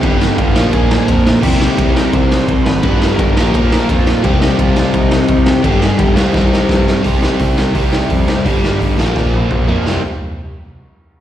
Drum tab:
CC |--------|x-------|--------|--------|
RD |x-x-x-x-|--x-x-x-|x-x-x-x-|x-x-x-x-|
HH |--------|--------|--------|--------|
SD |-o-o-o-o|-o-o-o-o|-o-o-o-o|-o-o-o-o|
T1 |--------|--------|--------|--------|
T2 |--------|--------|--------|--------|
FT |--------|--------|--------|--------|
BD |o-o-o-o-|o-o-o-o-|o-o-o-o-|o-o-o-o-|

CC |--------|--------|--------|--------|
RD |x-x-----|--------|--------|--------|
HH |--------|o-o-o-o-|o-o-----|--------|
SD |-o-ooooo|-o-o-o-o|-o-oo---|o-------|
T1 |--------|--------|-----o--|--------|
T2 |--------|--------|------o-|--------|
FT |--------|--------|-------o|--------|
BD |o-o-o-o-|o-o-o-o-|o-o-o-o-|--------|